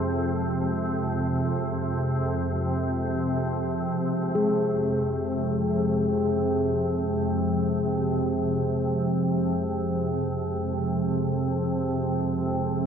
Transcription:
Already playing: F2 C3 G#3 G#4
4.35 F2 C3 G#3 G#4

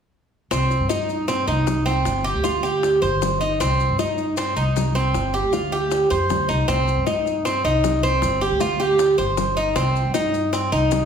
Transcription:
0.51 C2 C4, high bongo, maracas
0.70 high bongo, maracas
0.80 G2
0.89 D#4, high bongo, maracas
1.09 high bongo, maracas
1.28 C4, high bongo, maracas
1.47 C2 D#4, maracas
1.67 high bongo, low bongo, maracas
1.86 C4, high bongo, maracas
2.05 G1, high bongo, maracas
2.24 G4, maracas
2.34 D2
2.44 F4, high bongo, maracas
2.63 G4, high bongo, maracas
2.83 high bongo, maracas
3.02 G1 C5, high bongo, maracas
3.22 high bongo, low bongo, maracas
3.41 D#4, high bongo, maracas
3.60 C2 C4, high bongo, maracas
3.80 high bongo, maracas
3.89 G2
3.99 D#4, high bongo, maracas
4.18 high bongo, maracas
4.37 C4, high bongo, maracas
4.56 C2 D#4, maracas
4.76 high bongo, low bongo, maracas
4.95 C4, high bongo, maracas
5.14 G1, high bongo, maracas
5.34 G4, maracas
5.43 D2
5.53 F4, high bongo, maracas
5.72 G4, high bongo, maracas
5.91 high bongo, maracas
6.10 F2 C5, high bongo, maracas
6.30 D2, high bongo, low bongo, maracas
6.49 C2 D#4, high bongo, maracas
6.68 C2 C4, high bongo, maracas
6.87 high bongo, maracas
6.97 G2
7.06 D#4, high bongo, maracas
7.26 high bongo, maracas
7.45 C4, high bongo, maracas
7.64 C2 D#4, maracas
7.84 high bongo, low bongo, maracas
8.03 C4, high bongo, maracas
8.22 G1, high bongo, maracas
8.41 G4, maracas
8.51 D2
8.60 F4, high bongo, maracas
8.80 G4, high bongo, maracas
8.99 high bongo, maracas
9.18 G1 C5, high bongo, maracas
9.37 high bongo, low bongo, maracas
9.57 D#4, high bongo, maracas
9.76 C2 C4, high bongo, maracas
9.95 high bongo, maracas
10.05 G2
10.14 D#4, high bongo, maracas
10.34 high bongo, maracas
10.53 C4, high bongo, maracas
10.72 C2 D#4, maracas
10.91 high bongo, low bongo, maracas

